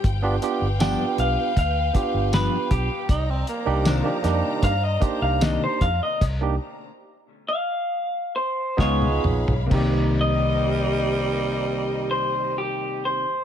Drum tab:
CC |----------------|----------------|x---------------|x---------------|
HH |x-x-x-x-x-x-x-x-|x-x-x-x-x-x-x-x-|x---------------|----------------|
TB |----x-------x---|----x-------x---|----------------|----------------|
SD |----o-------o---|----o-o-----o---|------------o---|----------------|
T1 |----------------|----------------|-------------o--|----------------|
T2 |----------------|----------------|--------------o-|----------------|
FT |----------------|----------------|---------------o|----------------|
BD |o-------o-o---o-|o-------o-o---o-|o-----------o---|o---------------|